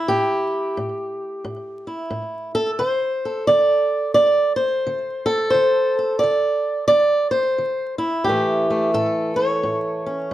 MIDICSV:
0, 0, Header, 1, 2, 480
1, 0, Start_track
1, 0, Tempo, 683371
1, 55, Time_signature, 4, 2, 24, 8
1, 7262, End_track
2, 0, Start_track
2, 0, Title_t, "Steel-string acoustic guitar"
2, 0, Program_c, 0, 25
2, 0, Note_on_c, 0, 57, 51
2, 0, Note_on_c, 0, 64, 83
2, 59, Note_on_c, 0, 67, 92
2, 63, Note_on_c, 0, 45, 78
2, 502, Note_off_c, 0, 45, 0
2, 535, Note_off_c, 0, 64, 0
2, 543, Note_on_c, 0, 45, 74
2, 981, Note_off_c, 0, 45, 0
2, 1015, Note_on_c, 0, 45, 76
2, 1314, Note_off_c, 0, 67, 0
2, 1314, Note_on_c, 0, 64, 46
2, 1457, Note_off_c, 0, 45, 0
2, 1478, Note_on_c, 0, 45, 72
2, 1786, Note_off_c, 0, 64, 0
2, 1789, Note_on_c, 0, 69, 101
2, 1898, Note_off_c, 0, 69, 0
2, 1928, Note_off_c, 0, 45, 0
2, 1958, Note_on_c, 0, 72, 99
2, 1967, Note_off_c, 0, 57, 0
2, 1969, Note_on_c, 0, 50, 68
2, 2285, Note_on_c, 0, 69, 50
2, 2413, Note_off_c, 0, 50, 0
2, 2436, Note_off_c, 0, 72, 0
2, 2439, Note_on_c, 0, 74, 107
2, 2451, Note_on_c, 0, 50, 67
2, 2894, Note_off_c, 0, 50, 0
2, 2901, Note_off_c, 0, 74, 0
2, 2910, Note_on_c, 0, 74, 116
2, 2922, Note_on_c, 0, 50, 77
2, 3201, Note_off_c, 0, 74, 0
2, 3203, Note_on_c, 0, 72, 90
2, 3369, Note_off_c, 0, 50, 0
2, 3417, Note_on_c, 0, 50, 74
2, 3690, Note_off_c, 0, 69, 0
2, 3693, Note_on_c, 0, 69, 100
2, 3857, Note_off_c, 0, 50, 0
2, 3858, Note_off_c, 0, 72, 0
2, 3866, Note_on_c, 0, 72, 92
2, 3894, Note_on_c, 0, 50, 76
2, 4180, Note_off_c, 0, 69, 0
2, 4205, Note_on_c, 0, 69, 51
2, 4335, Note_off_c, 0, 50, 0
2, 4345, Note_off_c, 0, 72, 0
2, 4347, Note_on_c, 0, 74, 99
2, 4379, Note_on_c, 0, 50, 72
2, 4818, Note_off_c, 0, 50, 0
2, 4821, Note_off_c, 0, 74, 0
2, 4830, Note_on_c, 0, 74, 116
2, 4848, Note_on_c, 0, 50, 75
2, 5132, Note_off_c, 0, 74, 0
2, 5135, Note_on_c, 0, 72, 94
2, 5292, Note_off_c, 0, 50, 0
2, 5327, Note_on_c, 0, 50, 69
2, 5604, Note_off_c, 0, 72, 0
2, 5607, Note_on_c, 0, 64, 82
2, 5772, Note_off_c, 0, 50, 0
2, 5787, Note_off_c, 0, 69, 0
2, 5790, Note_on_c, 0, 67, 89
2, 5798, Note_off_c, 0, 64, 0
2, 5810, Note_on_c, 0, 45, 79
2, 5821, Note_on_c, 0, 52, 50
2, 5823, Note_on_c, 0, 57, 48
2, 6110, Note_off_c, 0, 57, 0
2, 6113, Note_on_c, 0, 57, 51
2, 6254, Note_off_c, 0, 45, 0
2, 6279, Note_off_c, 0, 67, 0
2, 6279, Note_on_c, 0, 45, 71
2, 6282, Note_on_c, 0, 69, 90
2, 6575, Note_on_c, 0, 73, 79
2, 6729, Note_off_c, 0, 45, 0
2, 6767, Note_on_c, 0, 45, 74
2, 7066, Note_off_c, 0, 69, 0
2, 7069, Note_on_c, 0, 61, 45
2, 7213, Note_off_c, 0, 45, 0
2, 7262, Note_off_c, 0, 52, 0
2, 7262, Note_off_c, 0, 57, 0
2, 7262, Note_off_c, 0, 61, 0
2, 7262, Note_off_c, 0, 73, 0
2, 7262, End_track
0, 0, End_of_file